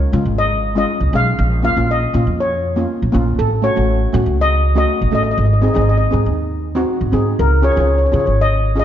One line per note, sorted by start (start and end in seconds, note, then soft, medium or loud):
0.00 0.41 C#5 medium
0.12 0.23 C#3 medium
0.12 0.51 G#3 medium
0.12 0.51 C#4 medium
0.12 0.52 F4 medium
0.25 0.83 G#1 medium
0.38 0.77 D#5 medium
0.75 0.98 G#3 medium
0.75 0.99 C#4 medium
0.75 0.99 F4 medium
0.75 1.15 D#5 medium
1.00 1.10 C#2 medium
1.13 1.32 B1 medium
1.13 1.39 G#3 medium
1.13 1.39 C#4 medium
1.13 1.39 G#4 medium
1.13 1.63 F5 medium
1.39 1.67 A#1 medium
1.63 1.71 A#3 medium
1.63 1.71 C#4 medium
1.63 1.72 F4 medium
1.63 1.76 F5 medium
1.77 2.05 A#1 medium
1.77 1.99 A#3 medium
1.77 1.99 C#4 medium
1.77 2.00 F4 medium
1.91 2.41 D#5 medium
2.13 2.24 A#2 medium
2.13 2.51 A#3 medium
2.13 2.52 C#4 medium
2.13 2.52 F4 medium
2.27 2.84 F2 medium
2.40 3.11 C#5 medium
2.76 2.99 A#3 medium
2.76 2.99 C#4 medium
2.76 2.99 F4 medium
3.02 3.11 A#1 medium
3.12 3.33 A#1 medium
3.12 3.38 A#3 medium
3.12 3.39 C#4 medium
3.12 3.39 F4 medium
3.39 3.67 A1 medium
3.39 3.64 A4 medium
3.62 3.71 A3 medium
3.62 3.71 C#4 medium
3.62 3.72 F#4 medium
3.62 4.10 C#5 medium
3.76 4.05 A1 medium
3.76 3.99 A3 medium
3.76 3.99 C#4 medium
3.76 3.99 F#4 medium
4.13 4.24 A2 loud
4.13 4.51 A3 medium
4.13 4.51 C#4 medium
4.13 4.52 F#4 medium
4.26 4.83 C#2 medium
4.41 4.77 D#5 medium
4.75 4.98 A3 medium
4.75 4.99 C#4 medium
4.75 4.99 F#4 medium
4.75 5.14 D#5 medium
5.01 5.11 A1 medium
5.11 5.32 A1 medium
5.11 5.37 A3 medium
5.11 5.38 C#4 soft
5.11 5.38 A4 medium
5.11 5.21 D#5 medium
5.23 5.29 D#5 medium
5.31 5.37 D#5 medium
5.38 5.67 G#1 medium
5.38 5.44 D#5 soft
5.46 5.52 D#5 soft
5.53 5.59 D#5 soft
5.62 5.70 C4 medium
5.62 5.71 D#4 medium
5.62 5.71 G#4 medium
5.62 5.67 D#5 soft
5.68 5.73 D#5 soft
5.74 6.04 G#1 medium
5.74 5.98 C4 medium
5.74 5.98 D#4 medium
5.74 5.98 G#4 medium
5.74 5.80 D#5 medium
5.81 5.88 D#5 medium
5.89 5.96 D#5 medium
5.97 6.04 D#5 medium
6.11 6.23 G#2 medium
6.11 6.50 C4 medium
6.11 6.51 D#4 medium
6.11 6.51 G#4 medium
6.26 6.83 D#2 medium
6.75 6.98 C4 medium
6.75 6.98 D#4 medium
6.75 6.99 F#4 medium
7.01 7.10 G#1 medium
7.12 7.32 G#2 medium
7.12 7.38 C4 medium
7.12 7.38 D#4 medium
7.12 7.39 G#4 medium
7.39 7.68 C#2 medium
7.39 7.51 A#4 medium
7.62 7.71 C#4 medium
7.62 7.71 F4 medium
7.62 7.71 G#4 medium
7.62 7.71 C#5 medium
7.72 7.79 C#5 medium
7.76 8.05 C#2 medium
7.76 7.99 C#4 medium
7.76 7.99 F4 medium
7.76 7.99 G#4 medium
7.80 7.86 C#5 medium
7.87 7.94 C#5 soft
7.98 8.04 C#5 soft
8.06 8.11 C#5 soft
8.12 8.23 C#3 medium
8.12 8.51 C#4 medium
8.12 8.51 F4 medium
8.12 8.51 G#4 medium
8.12 8.18 C#5 medium
8.20 8.25 C#5 medium
8.26 8.84 G#1 medium
8.26 8.32 C#5 medium
8.41 8.78 D#5 medium
8.75 8.85 C#4 medium
8.75 8.85 F4 medium
8.75 8.85 G#4 medium
8.79 8.85 D#5 medium